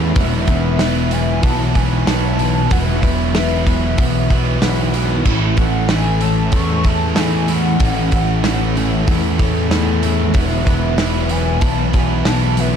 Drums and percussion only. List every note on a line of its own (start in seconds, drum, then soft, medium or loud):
0.16 kick loud
0.16 open hi-hat medium
0.48 kick medium
0.48 open hi-hat medium
0.79 snare loud
0.79 open hi-hat medium
1.11 open hi-hat medium
1.43 kick loud
1.43 open hi-hat medium
1.75 kick medium
1.75 open hi-hat medium
2.07 snare loud
2.07 open hi-hat medium
2.39 open hi-hat medium
2.71 kick loud
2.71 open hi-hat medium
3.03 kick medium
3.03 open hi-hat medium
3.35 snare loud
3.35 open hi-hat medium
3.67 kick medium
3.67 open hi-hat medium
3.98 kick loud
3.98 open hi-hat medium
4.30 kick medium
4.30 open hi-hat medium
4.62 snare loud
4.62 open hi-hat medium
4.94 open hi-hat medium
5.25 kick loud
5.25 crash medium
5.57 kick medium
5.57 open hi-hat medium
5.89 snare loud
5.89 open hi-hat medium
6.21 open hi-hat medium
6.52 kick loud
6.52 open hi-hat medium
6.84 kick medium
6.84 open hi-hat medium
7.16 snare loud
7.16 open hi-hat medium
7.48 open hi-hat medium
7.80 kick loud
7.80 open hi-hat medium
8.12 kick medium
8.12 open hi-hat medium
8.44 snare loud
8.44 open hi-hat medium
8.77 open hi-hat medium
9.08 kick loud
9.08 open hi-hat medium
9.39 kick medium
9.39 open hi-hat medium
9.71 snare loud
9.71 open hi-hat medium
10.03 open hi-hat medium
10.34 kick loud
10.34 open hi-hat medium
10.67 kick medium
10.67 open hi-hat medium
10.98 snare loud
10.98 open hi-hat medium
11.29 open hi-hat medium
11.61 kick loud
11.61 open hi-hat medium
11.93 kick medium
11.93 open hi-hat medium
12.25 snare loud
12.25 open hi-hat medium
12.57 open hi-hat medium